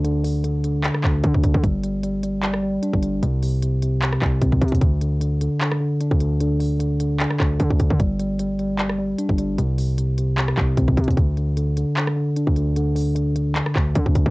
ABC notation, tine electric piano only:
X:1
M:4/4
L:1/8
Q:1/4=151
K:Gm
V:1 name="Tine electric piano" clef=bass
[D,D] D, D, D, D, D, D D, | G, G, G, G, G, G, D G, | C, C, C, C, C, C, C C, | D, D, D, D, D, D, D D, |
D, D, D, D, D, D, D D, | G, G, G, G, G, G, D G, | C, C, C, C, C, C, C C, | D, D, D, D, D, D, D D, |
D, D, D, D, D, D, D D, |]